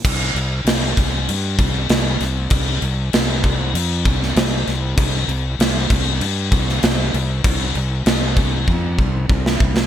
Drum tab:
CC |x-x-x-x-x-x-x-x-|x-x-x-x-x-x-x-x-|x-x-x-x-x-x-x-x-|x-x-x-x---------|
SD |----o-------o-o-|----o------oo-o-|----o------oo---|----o--------o-o|
BD |o-----o---o-----|o-----o---o-----|o-----o---o-----|o-----o-o-o-o-o-|